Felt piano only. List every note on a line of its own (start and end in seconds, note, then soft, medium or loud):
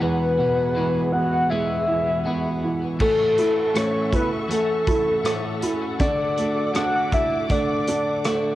0.00 2.96 E2 medium
0.38 1.84 B2 soft
0.76 1.86 E3 soft
1.14 2.24 B3 soft
1.51 2.97 G#3 soft
1.88 2.62 E3 soft
2.26 2.98 B3 soft
2.64 3.00 E3 soft
3.01 3.73 A3 medium
3.38 4.11 E4 soft
3.75 4.49 A3 soft
4.13 4.86 E4 soft
4.50 5.24 A3 soft
4.88 5.61 E4 soft
5.25 5.98 A3 soft
5.63 5.99 E4 soft
6.01 8.55 D3 medium
6.38 7.49 A3 medium
6.75 7.86 D4 soft
7.13 8.55 F#4 soft
7.51 8.24 A3 soft
7.88 8.55 D4 soft
8.25 8.55 A3 soft